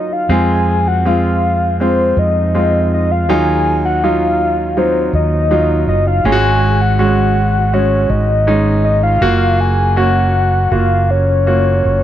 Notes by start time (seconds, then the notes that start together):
Already playing: F#3 D#4 F4 D#5
0.13 F5
0.29 F2 G#3 C4 F4 G#5
0.88 F#5
1.05 G#3 C4 F4 F5
1.80 G#3 C4 F4 C5
2.17 F2 D#5
2.54 G#3 C4 F4
2.94 D#5
3.12 F5
3.28 D#2 D#3 F#3 D#4 F4 G#5
3.85 F#5
4.04 F#3 D#4 F4 F5
4.77 F#3 D#4 F4 C5
5.13 D#2 D#5
5.51 F#3 D#4 F4
5.87 F#1 D#5
6.07 F5
6.24 G#1 G#2 G#3 C#4 F4 G#5
6.32 F#4
6.81 F#5
6.99 G#3 C#4 F#4 F#5
7.73 G#3 C#4 F#4 C#5
8.10 G#1 D#5
8.47 G#3 C#4 D#4
8.85 D#5
9.03 F5
9.21 F#1 A#3 F4 F#4
9.60 G#5
9.96 A#3 C#4 F#4 F#5
10.71 F#1 A#3 F4 F#4 F5
11.11 C#5
11.47 A#3 F4 F#4
11.85 F#1